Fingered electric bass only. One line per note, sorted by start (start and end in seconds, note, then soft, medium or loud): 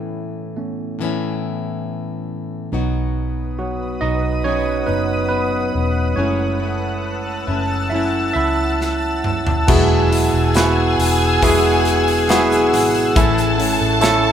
2.72 3.98 B1 medium
4.02 4.84 B1 medium
4.88 5.71 F#1 medium
5.75 6.15 E1 medium
6.17 7.43 F#1 medium
7.48 8.32 F#1 medium
8.36 9.64 C#2 medium
9.68 10.30 E1 medium
10.34 10.95 E1 medium
10.99 11.39 E1 loud
11.42 12.73 E1 medium
12.73 13.13 G#1 medium
13.16 13.77 A1 medium
13.81 14.32 A1 medium